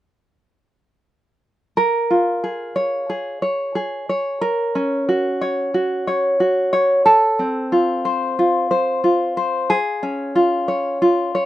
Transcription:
1.77 A#4
2.10 F4
2.44 G#4
2.76 C#5
3.10 G#4
3.42 C#5
3.75 G#4
4.09 C#5
4.41 A#4
4.75 C#4
5.09 F#4
5.41 C#5
5.74 F#4
6.07 C#5
6.40 F#4
6.73 C#5
7.06 A4
7.39 C4
7.72 F4
8.05 C5
8.39 F4
8.71 C5
9.04 F4
9.37 C5
9.70 G#4
10.03 C#4
10.35 F4
10.68 C#5
11.02 F4
11.35 C#5

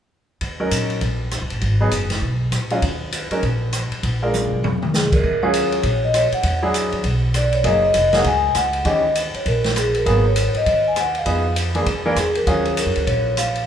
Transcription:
0.41 D#2, kick, ride
0.60 F#3 C#4 D#4 A#4
0.71 A#2, hi-hat pedal, ride
0.90 ride
1.01 A#1, kick, ride
1.31 cross-stick, hi-hat pedal, ride
1.42 C#2
1.50 A1, ride
1.61 G#1, kick, ride
1.80 F#3 B3 D#4 G#4
1.91 F#1, hi-hat pedal, ride
2.10 snare, ride
2.22 B1, kick
2.52 A#2, cross-stick, hi-hat pedal, ride
2.70 F#3 C#4 D#4 F4, ride
2.82 D#2, kick, ride
3.12 hi-hat pedal, ride
3.31 F#3 C#4 D#4 A#4, muted upright bass stroke, ride
3.42 A#1, kick, ride
3.73 cross-stick, hi-hat pedal, ride
3.91 muted upright bass stroke, ride
4.03 A#1, kick, ride
4.22 G#3 D4 F4 A#4
4.33 hi-hat pedal, high tom
4.52 B1
4.63 F1, high tom
4.82 mid tom
4.94 G#4, snare, hi-hat pedal
5.12 A#4, kick, crash
5.24 D#2 A#4, kick
5.43 F#3 C#4 F4 G#4 C#5
5.54 hi-hat pedal, ride
5.72 C#5, ride
5.83 A#1, kick, ride
6.04 D#5
6.14 C#5, cross-stick, hi-hat pedal, ride
6.32 F#5, muted upright bass stroke, ride
6.43 E2, kick, ride
6.62 F#3 D4 E4 G#4
6.74 hi-hat pedal, ride
6.92 D#2, ride
7.04 B1, kick, ride
7.34 D5, cross-stick, hi-hat pedal, ride
7.53 C#5, ride
7.64 F#1 F#3 A#3 D#4 G#4 D#5, kick, ride
7.85 D#5
7.94 F1, hi-hat pedal, ride
8.13 F#3 A#3 D#4 G#4 F#5, snare, ride
8.24 C#2 G#5, kick, ride
8.55 C#2 F#5, cross-stick, hi-hat pedal, ride
8.73 ride
8.85 D#2 E3 C#4 D#4 G4 D#5, kick, ride
9.15 hi-hat pedal, ride
9.34 C#5, muted upright bass stroke, ride
9.46 A#1 A#4, kick, ride
9.64 snare, ride
9.76 G#4, cross-stick, hi-hat pedal, ride
9.95 A#4, ride
10.05 G#1 F#3 A#3 B3 G#4 A#4, kick, ride
10.28 C#5
10.36 hi-hat pedal, ride
10.54 D#5, muted upright bass stroke, ride
10.66 D#2, kick, ride
10.88 G#5
10.96 F#5, cross-stick, hi-hat pedal, ride
11.15 F5, ride
11.26 F2 F3 B3 D#4 G#4, kick, ride
11.56 hi-hat pedal, ride
11.75 E3 A#3 D4 G#4, ride
11.86 E2, kick, ride
12.05 E3 A#3 D4 A#4
12.16 E2 G#4, cross-stick, hi-hat pedal, ride
12.35 A#4, ride
12.47 D#2 F#3 C#4 F4 G#4, kick, ride
12.65 ride
12.77 A#4, hi-hat pedal, ride
12.86 F2
12.96 D2, ride
13.07 A#1 C#5, kick, ride
13.37 F5, cross-stick, hi-hat pedal, ride
13.55 ride

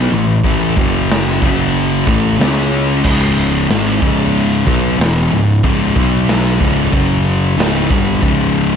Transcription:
Already playing: B2 F#3 B3
0.10 A1 A2 E3
0.44 A1 A2 E3 A3, kick, open hi-hat
0.77 F#1 F#2 C#3 F#3, kick
1.10 snare, open hi-hat
1.42 F#1 F#2 C#3 F#3, kick
1.75 open hi-hat
2.07 A1 A2 E3 A3, kick
2.39 C#2 C#3 G#3 C#4, snare, open hi-hat
3.03 C#1 C#2 G#2 C#3, kick, crash
3.69 G#1 G#2 D#3 G#3, snare, open hi-hat
4.01 C#1 C#2 G#2 C#3, kick
4.35 open hi-hat
4.66 B1 B2 F#3 B3, kick
4.98 E1 E2 B2 E3, snare, open hi-hat
5.31 C#1 C#2 G#2
5.63 C#1 C#2 G#2 C#3, kick, open hi-hat
5.96 B1 B2 F#3 B3, kick
6.28 snare, open hi-hat
6.61 C#1 C#2 G#2 C#3, kick
6.92 F#1 F#2 C#3 F#3, kick, open hi-hat
7.57 C#1 C#2 G#2 C#3, snare, open hi-hat
7.90 G1 G2 D3 G3, kick
8.22 C#1 C#2 G#2 C#3, kick, open hi-hat

